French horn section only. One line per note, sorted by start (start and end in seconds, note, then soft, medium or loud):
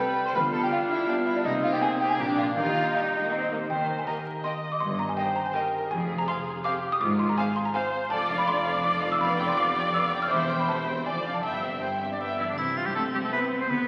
0.00 0.34 G3 soft
0.00 0.31 C4 soft
0.35 1.43 G3 soft
0.35 1.45 F4 soft
1.45 3.51 A#3 medium
1.45 2.17 D#4 medium
2.20 2.57 D4 medium
2.57 3.51 G4 medium